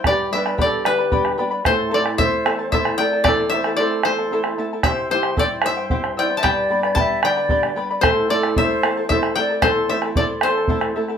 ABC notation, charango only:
X:1
M:6/8
L:1/16
Q:3/8=75
K:Am
V:1 name="Charango"
[GBdgb]2 [Bdgb] [Bdb] [GBdgb]2 [Bdgb] [Bdb] [GBdgb]2 [Bdgb] [Bdb] | [EAcea]2 [EAea] [EAa] [EAcea]2 [EAea] [EAa] [EAcea]2 [EAea] [EAa] | [EAcea]2 [EAea] [EAa] [EAcea]2 [EAea] [EAa] [EAcea]2 [EAea] [EAa] | [EGceg]2 [Eceg] [Ecg] [EGceg]2 [Eceg] [Ecg] [EGceg]2 [Eceg] [Ecg] |
[GBdgb]2 [Bdgb] [Bdb] [GBdgb]2 [Bdgb] [Bdb] [GBdgb]2 [Bdgb] [Bdb] | [EAcea]2 [EAea] [EAa] [EAcea]2 [EAea] [EAa] [EAcea]2 [EAea] [EAa] | [EAcea]2 [EAea] [EAa] [EAcea]2 [EAea] [EAa] [EAcea]2 [EAea] [EAa] |]